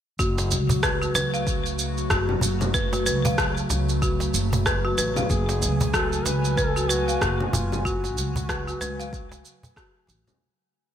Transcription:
0.19 upright bass F#1, analog synth pad C#3 F#3 A3 F#4, marimba F#4, kick, shaker
0.38 cajon slap, shaker
0.51 upright bass C#2, shaker
0.69 cajon bass, shaker
0.83 marimba B4, kick, cross-stick, shaker
1.02 marimba F#4, shaker
1.15 upright bass C#2, marimba B4, cajon slap, shaker
1.34 marimba F5, shaker
1.47 kick, shaker
1.66 shaker
1.79 shaker
1.98 shaker
2.10 upright bass F#1, marimba F#4, kick, cross-stick, shaker
2.29 low conga
2.41 upright bass F#1, cajon bass, shaker
2.61 low conga, shaker
2.74 marimba B4, kick, shaker
2.93 marimba F#4, cajon slap, shaker
3.06 upright bass C#2, marimba B4, shaker
3.25 marimba F5, cajon bass, shaker
3.38 kick, cross-stick, shaker
3.57 shaker
3.70 upright bass C#2, cajon slap, shaker
3.89 shaker
4.02 marimba F#4, kick, shaker
4.20 cajon slap, shaker
4.34 upright bass F#1, shaker
4.53 cajon bass, shaker
4.66 marimba B4, kick, cross-stick, shaker
4.85 marimba F#4
4.98 upright bass A1, marimba B4, cajon slap, shaker
5.16 marimba F5, cajon slap, low conga, shaker
5.30 upright bass F#1, duduk G#4, analog synth pad G#5, kick, shaker
5.49 cajon slap, shaker
5.62 upright bass C#2, shaker
5.81 cajon bass, shaker
5.93 marimba F#4, duduk A4, kick, cross-stick, shaker
6.13 shaker
6.25 upright bass C#2, duduk B4, cajon slap, shaker
6.45 shaker
6.57 duduk A4, marimba B4, kick, shaker
6.76 marimba F#4, shaker
6.89 duduk F#4, marimba B4, shaker
7.08 marimba F5, shaker
7.21 upright bass F#1, kick, cross-stick, shaker
7.40 low conga
7.53 upright bass F#1, duduk F4, cajon bass, shaker
7.72 low conga, shaker
7.85 marimba F#4, duduk F#4, kick, shaker
8.04 cajon slap, shaker
8.17 upright bass C#2, shaker
8.36 cajon bass, shaker
8.49 marimba B4, kick, cross-stick, shaker
8.68 marimba F#4, shaker
8.81 upright bass C#2, marimba B4, cajon slap, shaker
9.00 marimba F5, shaker
9.13 kick, shaker
9.32 cajon slap, shaker
9.45 shaker
9.63 cajon bass, shaker
9.76 marimba F#4, kick, cross-stick, shaker
10.07 upright bass A1, cajon slap, shaker
10.27 upright bass B1, cajon slap, low conga, shaker

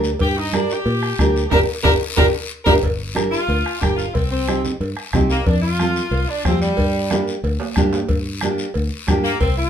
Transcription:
Already playing: fingered electric bass D2, nylon-string guitar D4 G4 A#4
0.04 short guiro
0.19 fingered electric bass G2, saxophone section G4, bombo low, cowbell, high conga, long guiro
0.38 saxophone section D#4
0.53 nylon-string guitar D4 G4 A#4, saxophone section D4, bombo rim, high conga, short guiro
0.70 saxophone section G4, short guiro
0.86 fingered electric bass A#2, cowbell, high conga, long guiro
1.03 bombo rim
1.19 fingered electric bass D2, nylon-string guitar D4 G4 A#4, bombo low, bombo rim, high conga, short guiro
1.36 short guiro
1.50 fingered electric bass G1, saxophone section D4 G4 A#4, nylon-string guitar D4 G4 A#4, bombo low, low conga, high timbale, long guiro
1.83 fingered electric bass G1, saxophone section D4 G4 A#4, nylon-string guitar D4 G4 A#4, bombo low, low conga, high timbale, long guiro
2.17 fingered electric bass G1, saxophone section D4 G4 A#4, nylon-string guitar D4 G4 A#4, bombo low, low conga, high timbale, long guiro
2.64 fingered electric bass G1, saxophone section D4 G4 A#4, nylon-string guitar D4 G4 A#4, bombo low, low conga, high timbale, long guiro
2.83 fingered electric bass G1, bombo low, cowbell, high conga, long guiro
3.15 nylon-string guitar D4 G4 A#4, bombo rim, high conga, short guiro
3.31 saxophone section F4, short guiro
3.48 fingered electric bass D2, cowbell, long guiro
3.66 bombo rim
3.81 fingered electric bass G1, nylon-string guitar D4 G4 A#4, saxophone section G4, bombo low, bombo rim, high conga, short guiro
3.96 saxophone section F4, short guiro
4.15 fingered electric bass C2, saxophone section C4, bombo low, cowbell, high conga, long guiro
4.31 saxophone section C4
4.48 nylon-string guitar C4 D#4 G4, bombo rim, high conga, short guiro
4.64 low conga, short guiro
4.80 fingered electric bass G2, cowbell, high conga, long guiro
4.97 bombo rim
5.13 fingered electric bass C2, nylon-string guitar C4 D#4 G4, bombo low, bombo rim, high conga, low conga, low timbale, short guiro
5.30 saxophone section A#3, short guiro
5.46 fingered electric bass F2, saxophone section D4, bombo low, cowbell, high conga, long guiro
5.61 saxophone section F4
5.79 nylon-string guitar C4 F4 A4, bombo rim, high conga, short guiro
5.96 short guiro
6.11 fingered electric bass C2, cowbell, high conga, long guiro
6.29 saxophone section D4
6.45 fingered electric bass F2, saxophone section C4, nylon-string guitar C4 F4 G4, bombo low, bombo rim, high conga, low timbale, short guiro
6.61 saxophone section G3, short guiro
6.77 fingered electric bass G2, bombo low, cowbell, long guiro
7.11 nylon-string guitar A#3 D4 G4, bombo rim, high conga, high timbale, short guiro
7.28 short guiro
7.43 fingered electric bass D2, cowbell, high conga, long guiro
7.60 low timbale
7.76 fingered electric bass G2, nylon-string guitar A#3 D4 G4, bombo low, bombo rim, high conga, low conga, short guiro
7.93 low timbale, short guiro
8.09 fingered electric bass G2, bombo low, cowbell, high conga, long guiro
8.41 nylon-string guitar A#3 D4 G4, bombo rim, high conga, short guiro
8.58 short guiro
8.74 fingered electric bass D2, cowbell, high conga, long guiro
9.07 fingered electric bass G2, nylon-string guitar A#3 D4 G4, bombo low, bombo rim, high conga, low timbale, short guiro
9.24 saxophone section A#3, short guiro
9.40 fingered electric bass C2, saxophone section C4, bombo low, cowbell, long guiro
9.58 saxophone section F4

